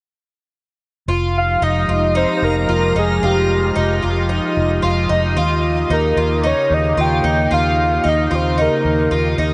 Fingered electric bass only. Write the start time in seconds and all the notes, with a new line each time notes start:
1.08 F1
1.61 F1
1.88 F1
2.42 F1
2.69 F1
2.95 F1
3.22 F1
3.76 F1
4.03 F1
4.56 F1
4.83 F1
5.10 F1
5.36 D#2
5.89 D#2
6.16 D#2
6.70 D#2
6.97 D#2
7.24 D#2
7.51 D#2
8.05 D#2
8.31 D#2
8.84 D#2
9.11 D#2
9.38 D#2